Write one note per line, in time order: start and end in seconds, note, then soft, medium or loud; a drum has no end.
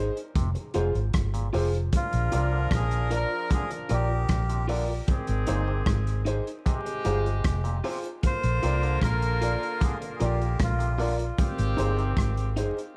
0.00 0.13 D#4 medium
0.00 0.17 D#4 medium
0.00 0.14 G#4 medium
0.00 0.18 G#4 medium
0.00 0.14 C5 medium
0.00 0.18 C5 loud
0.17 closed hi-hat soft
0.36 0.53 F1 loud
0.36 0.50 C3 medium
0.36 kick loud
0.36 closed hi-hat medium
0.55 muted clean electric guitar stroke soft
0.55 closed hi-hat medium
0.74 0.93 F1 medium
0.74 0.89 G#2 medium
0.74 0.92 F4 medium
0.74 0.96 F4 medium
0.74 0.93 G#4 medium
0.74 0.93 C5 medium
0.74 closed hi-hat medium
0.95 1.12 G#1 medium
0.95 1.02 G#4 soft
0.95 1.02 C5 soft
0.95 closed hi-hat soft
1.13 1.49 G1 medium
1.13 kick loud
1.13 cross-stick loud
1.13 closed hi-hat loud
1.34 1.48 A#2 medium
1.34 closed hi-hat soft
1.53 1.89 F1 medium
1.53 1.68 C3 medium
1.53 1.71 F4 medium
1.53 1.75 F4 medium
1.53 1.71 G#4 medium
1.53 1.75 G#4 medium
1.53 1.76 C5 loud
1.53 1.72 C5 medium
1.53 open hi-hat medium
1.74 closed hi-hat soft
1.93 4.65 F3 medium
1.93 4.65 D4 medium
1.93 2.69 F4 medium
1.93 4.65 A#4 medium
1.93 kick loud
1.93 closed hi-hat medium
2.13 2.31 A#1 medium
2.13 closed hi-hat soft
2.32 2.68 C2 medium
2.32 2.47 C3 medium
2.32 2.50 F4 medium
2.32 2.54 F4 medium
2.32 2.54 A#4 medium
2.32 2.50 A#4 medium
2.32 2.54 D5 loud
2.32 2.51 D5 medium
2.32 closed hi-hat medium
2.52 2.67 D3 medium
2.71 3.24 A#1 medium
2.71 kick loud
2.71 cross-stick loud
2.71 closed hi-hat medium
2.76 3.10 G#4 medium
2.91 closed hi-hat soft
3.10 3.28 F4 medium
3.10 3.33 F4 medium
3.10 3.29 A#4 medium
3.10 3.33 A#4 medium
3.10 3.29 D5 loud
3.10 3.33 D5 medium
3.10 closed hi-hat medium
3.16 3.50 A#4 loud
3.50 3.65 D3 medium
3.50 3.71 G#4 loud
3.50 kick loud
3.50 closed hi-hat medium
3.70 muted clean electric guitar stroke soft
3.70 closed hi-hat soft
3.89 4.26 A#1 medium
3.89 4.05 A#2 medium
3.89 4.07 F4 medium
3.89 4.11 F4 medium
3.89 4.08 A#4 medium
3.89 4.09 D5 medium
3.89 4.08 D5 loud
3.89 closed hi-hat medium
3.94 4.67 G4 medium
4.10 4.18 A#4 soft
4.10 4.18 D5 soft
4.29 5.00 A#1 medium
4.29 kick loud
4.29 cross-stick loud
4.29 closed hi-hat loud
4.49 4.64 C3 medium
4.49 closed hi-hat soft
4.68 4.84 D3 medium
4.68 4.86 F4 medium
4.68 4.90 F4 medium
4.68 4.86 A#4 loud
4.68 4.90 A#4 medium
4.68 4.91 D5 loud
4.68 4.87 D5 loud
4.68 open hi-hat medium
4.88 muted clean electric guitar stroke medium
5.07 6.24 D#3 medium
5.07 6.24 C4 medium
5.07 6.24 G#4 medium
5.07 kick loud
5.07 closed hi-hat medium
5.27 5.46 G#1 loud
5.27 closed hi-hat medium
5.47 5.83 G1 medium
5.47 5.63 A#2 medium
5.47 5.65 D#4 medium
5.47 5.69 D#4 medium
5.47 5.69 G#4 medium
5.47 5.66 G#4 medium
5.47 5.70 C5 loud
5.47 5.66 C5 loud
5.47 closed hi-hat medium
5.68 5.82 C3 medium
5.86 6.39 G#1 medium
5.86 kick loud
5.86 cross-stick loud
5.86 closed hi-hat medium
6.07 closed hi-hat soft
6.25 6.43 D#4 medium
6.25 6.48 D#4 medium
6.25 6.44 G#4 medium
6.25 6.48 G#4 medium
6.25 6.44 C5 loud
6.25 6.48 C5 medium
6.25 closed hi-hat medium
6.47 closed hi-hat soft
6.66 6.80 C3 medium
6.66 7.82 C3 medium
6.66 7.82 G#3 medium
6.66 7.82 G4 loud
6.66 kick loud
6.66 closed hi-hat medium
6.85 muted clean electric guitar stroke soft
6.85 closed hi-hat soft
7.05 7.41 G1 medium
7.05 7.20 G#2 medium
7.05 7.23 F4 medium
7.05 7.27 F4 medium
7.05 7.24 G#4 medium
7.05 7.23 G#4 medium
7.05 7.24 C5 medium
7.05 closed hi-hat medium
7.25 7.33 G#4 soft
7.25 7.33 C5 soft
7.25 closed hi-hat soft
7.44 7.80 F1 medium
7.44 kick loud
7.44 cross-stick loud
7.44 closed hi-hat loud
7.64 7.79 A#2 medium
7.64 closed hi-hat soft
7.84 7.99 C3 medium
7.84 8.05 F4 medium
7.84 8.02 F4 medium
7.84 8.06 G#4 medium
7.84 8.02 G#4 medium
7.84 8.06 C5 loud
7.84 8.02 C5 medium
7.84 open hi-hat medium
8.04 closed hi-hat soft
8.23 10.95 D3 medium
8.23 10.95 A#3 medium
8.23 10.95 F4 medium
8.23 8.99 C5 loud
8.23 kick loud
8.23 closed hi-hat medium
8.43 8.61 A#1 medium
8.43 closed hi-hat soft
8.63 8.98 C2 medium
8.63 8.77 C3 medium
8.63 8.84 F4 medium
8.63 8.81 F4 medium
8.63 8.85 A#4 medium
8.63 8.81 A#4 medium
8.63 8.85 D5 loud
8.63 8.81 D5 loud
8.63 closed hi-hat medium
8.83 8.97 D3 medium
8.83 closed hi-hat soft
9.02 9.55 A#1 medium
9.02 9.84 A#4 loud
9.02 kick loud
9.02 cross-stick loud
9.02 closed hi-hat medium
9.22 closed hi-hat soft
9.41 9.59 F4 medium
9.41 9.63 F4 medium
9.41 9.63 A#4 medium
9.41 9.60 A#4 medium
9.41 9.64 D5 medium
9.41 9.60 D5 medium
9.41 closed hi-hat medium
9.63 closed hi-hat soft
9.81 9.95 D3 medium
9.81 9.98 G#4 medium
9.81 kick loud
9.81 closed hi-hat medium
10.01 muted clean electric guitar stroke soft
10.01 closed hi-hat soft
10.16 10.21 G#4 medium
10.20 10.56 A#1 medium
10.20 10.35 A#2 medium
10.20 10.38 F4 medium
10.20 10.42 F4 medium
10.20 10.59 G4 medium
10.20 10.39 A#4 medium
10.20 10.39 D5 medium
10.20 10.39 D5 loud
10.20 closed hi-hat medium
10.41 10.48 A#4 soft
10.41 10.48 D5 soft
10.41 closed hi-hat soft
10.59 11.30 A#1 medium
10.59 11.17 F4 medium
10.59 kick loud
10.59 cross-stick loud
10.59 closed hi-hat loud
10.79 10.94 C3 medium
10.79 closed hi-hat soft
10.98 11.13 D3 medium
10.98 11.16 F4 medium
10.98 11.21 F4 medium
10.98 11.17 A#4 medium
10.98 11.21 A#4 medium
10.98 11.17 D5 loud
10.98 11.21 D5 loud
10.98 open hi-hat medium
11.18 muted clean electric guitar stroke soft
11.18 closed hi-hat soft
11.38 12.54 D#3 medium
11.38 12.54 C4 medium
11.38 12.54 G4 loud
11.38 kick loud
11.38 closed hi-hat medium
11.58 11.76 G#1 medium
11.58 closed hi-hat medium
11.77 12.13 G1 medium
11.77 11.92 A#2 medium
11.77 11.95 D#4 medium
11.77 12.00 D#4 medium
11.77 11.96 G#4 medium
11.77 12.00 G#4 medium
11.77 11.96 C5 loud
11.77 12.00 C5 loud
11.77 closed hi-hat medium
11.97 12.12 C3 medium
11.97 closed hi-hat soft
12.17 12.70 G#1 medium
12.17 kick loud
12.17 cross-stick loud
12.17 closed hi-hat medium
12.37 closed hi-hat soft
12.56 12.74 D#4 medium
12.56 12.78 D#4 medium
12.56 12.78 G#4 medium
12.56 12.75 G#4 medium
12.56 12.79 C5 medium
12.56 12.75 C5 medium
12.56 closed hi-hat medium
12.78 closed hi-hat soft